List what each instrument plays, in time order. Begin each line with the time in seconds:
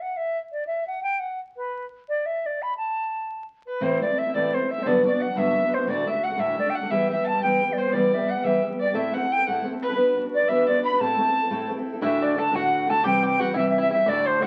0.02 flute F#5
0.17 flute E5
0.52 flute D5
0.67 flute E5
0.87 flute F#5
1.03 flute G5
1.19 flute F#5
1.57 flute B4
2.09 flute D5
2.26 flute E5
2.46 flute D5
2.62 flute B5
2.77 flute A5
3.67 flute B4, fiddle B4
3.80 steel-string acoustic guitar A2 E3 A3 C4 E4, flute C5, fiddle C5
4.01 steel-string acoustic guitar E3 A3 C4 E4, flute D5, fiddle D5
4.09 steel-string acoustic guitar A3 C4 E4
4.18 fiddle E5, flute E5
4.26 steel-string acoustic guitar A3 C4 E4
4.34 steel-string acoustic guitar A2 E3 A3 C4 E4, fiddle D5, flute D5
4.53 steel-string acoustic guitar E3 A3 C4 E4, fiddle C5, flute C5
4.62 steel-string acoustic guitar A3 C4 E4
4.70 fiddle E5, flute E5
4.78 steel-string acoustic guitar A3 C4 E4
4.82 steel-string acoustic guitar G2 D3 F#3, flute C5, fiddle D5 E5
4.86 steel-string acoustic guitar B3 D4 F#4, flute D5
5.04 steel-string acoustic guitar F#3 B3 D4 F#4, fiddle D5, flute D5
5.12 steel-string acoustic guitar F#3 B3 D4 F#4
5.20 fiddle F#5, flute F#5
5.28 steel-string acoustic guitar F#3 B3 D4 F#4
5.35 steel-string acoustic guitar G2 D3 F#3 B3 D4 F#4, fiddle E5, flute E5
5.56 steel-string acoustic guitar F#3 B3 D4 F#4
5.63 steel-string acoustic guitar F#3 B3 D4 F#4
5.69 fiddle B4 C5
5.74 steel-string acoustic guitar B3 D4 F#4, flute C5
5.79 steel-string acoustic guitar F#3
5.87 steel-string acoustic guitar D2 A2 D3 A3 D4 F#4, fiddle D5, flute D5
6.05 steel-string acoustic guitar D3 A3 D4 F#4, fiddle E5, flute E5
6.13 steel-string acoustic guitar D3 A3 D4 F#4
6.23 fiddle F#5, flute F#5
6.30 steel-string acoustic guitar D3 A3 D4 F#4
6.37 steel-string acoustic guitar D2 A2 D3 A3 D4 F#4, fiddle E5, flute E5
6.56 steel-string acoustic guitar D3 A3 D4 F#4, flute D5
6.65 steel-string acoustic guitar D3 A3 D4 F#4
6.70 flute G5
6.75 fiddle F#5, flute F#5
6.81 steel-string acoustic guitar D3 A3 D4 F#4
6.91 steel-string acoustic guitar E3 G3 B3 G4, fiddle E5, flute E5
7.09 steel-string acoustic guitar E3 G3 B3 G4, fiddle E5, flute E5
7.16 steel-string acoustic guitar G3 B3 G4
7.24 fiddle A5, flute A5
7.33 steel-string acoustic guitar G3 B3 G4
7.42 steel-string acoustic guitar E3 G3 B3 G4, fiddle G5, flute G5
7.61 steel-string acoustic guitar E3 G3 B3 G4
7.70 steel-string acoustic guitar G3 B3 G4, flute D5
7.78 fiddle C5, flute C5
7.86 steel-string acoustic guitar G3 B3 G4
7.92 steel-string acoustic guitar E3 G3 B3 G4, fiddle D5, flute D5
8.12 steel-string acoustic guitar E3 G3 B3 G4, flute E5
8.19 steel-string acoustic guitar G3 B3 G4
8.28 fiddle F#5, flute F#5
8.35 steel-string acoustic guitar G3 B3 G4
8.44 steel-string acoustic guitar E3 G3 B3 G4, fiddle E5, flute E5
8.61 steel-string acoustic guitar E3 G3 B3 G4
8.70 steel-string acoustic guitar G3 B3 G4
8.80 fiddle D5, flute D5
8.86 steel-string acoustic guitar G3 B3 G4
8.93 steel-string acoustic guitar A2 A3 C4 E4 A4, fiddle E5, flute E5
9.13 steel-string acoustic guitar A3 C4 E4 A4, fiddle F#5, flute F#5
9.22 steel-string acoustic guitar C4 E4 A4
9.32 fiddle G5, flute G5
9.38 steel-string acoustic guitar C4 E4 A4
9.46 steel-string acoustic guitar A2 A3 C4 E4 A4, fiddle F#5, flute F#5
9.64 steel-string acoustic guitar A3 C4 E4 A4
9.72 steel-string acoustic guitar C4 E4 A4
9.82 fiddle B4, flute B4
9.89 steel-string acoustic guitar C4 E4 A4
9.95 steel-string acoustic guitar B3 D4 F#4 B4
10.15 steel-string acoustic guitar B3 D4 F#4 B4
10.24 steel-string acoustic guitar D4 F#4 B4
10.34 fiddle D5, flute D5
10.39 steel-string acoustic guitar D4 F#4 B4
10.48 steel-string acoustic guitar B3 D4 F#4 B4, fiddle E5, flute E5
10.67 steel-string acoustic guitar B3 D4 F#4 B4, fiddle D5, flute D5
10.77 steel-string acoustic guitar D4 F#4 B4
10.84 fiddle B5, flute B5
10.92 steel-string acoustic guitar D4 F#4 B4
10.99 steel-string acoustic guitar A2 A3 C4 E4 A4, fiddle A5, flute A5
11.18 steel-string acoustic guitar A3 C4 E4 A4
11.28 steel-string acoustic guitar C4 E4 A4
11.43 steel-string acoustic guitar C4 E4 A4
11.50 steel-string acoustic guitar A2 A3 C4 E4 A4
11.68 steel-string acoustic guitar A3 C4 E4 A4
11.77 steel-string acoustic guitar C4 E4 A4
11.93 steel-string acoustic guitar C4 E4 A4
12.01 steel-string acoustic guitar D2 A2 D3 A3 D4 F#4, five-string banjo E4, fiddle E5, flute E5
12.22 five-string banjo D4, fiddle D5, flute D5
12.36 steel-string acoustic guitar D3 A3 D4 F#4, five-string banjo A4, fiddle A5, flute A5
12.51 steel-string acoustic guitar D2 A2 D3 A3 D4 F#4, fiddle F#5
12.55 five-string banjo F#4, flute F#5
12.87 steel-string acoustic guitar D3 A3 D4 F#4, five-string banjo A4, fiddle A5, flute A5
13.04 steel-string acoustic guitar C3 E3 G3 C4 G4, five-string banjo G4, fiddle G5, flute G5
13.23 five-string banjo G4, flute G5
13.36 steel-string acoustic guitar E3 G3 C4 G4, five-string banjo F#4, fiddle F#5 G5
13.41 flute F#5
13.54 steel-string acoustic guitar C3 E3 G3 C4 G4, five-string banjo E4, flute E5, fiddle E5
13.70 flute E5
13.78 five-string banjo E4, fiddle E5, flute E5
13.90 steel-string acoustic guitar G3 C4 G4, five-string banjo E4, fiddle E5, flute E5
14.06 steel-string acoustic guitar D2 A2 D3 A3 D4 F#4, five-string banjo D4, fiddle D5, flute D5
14.26 fiddle C5, flute C5
14.40 steel-string acoustic guitar D3 A3 D4 F#4, five-string banjo F#4, fiddle F#5, flute F#5